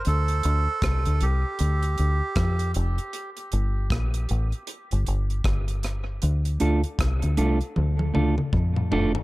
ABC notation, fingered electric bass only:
X:1
M:4/4
L:1/16
Q:"Swing 16ths" 1/4=78
K:Dphr
V:1 name="Fingered electric bass" clef=bass
D,,2 D,, z C,, D,, C,, z D,,2 D,, z F,,2 F,,, z | z2 G,,,2 B,,,2 A,,, z2 G,,, G,,,2 G,,,4 | D,,2 D,, z C,, D,, C,, z D,,2 D,, z F,,2 F,,, z |]